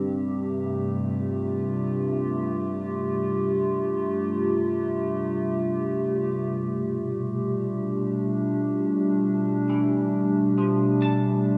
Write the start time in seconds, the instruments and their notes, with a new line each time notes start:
Already playing: ambient pad G2 C3 G3 A3 C4 G4
0.85 ambient pad F4
6.60 ambient pad B2
6.74 ambient pad G3
7.48 ambient pad D4
9.69 clean electric guitar E3
10.58 clean electric guitar F3
11.02 clean electric guitar A5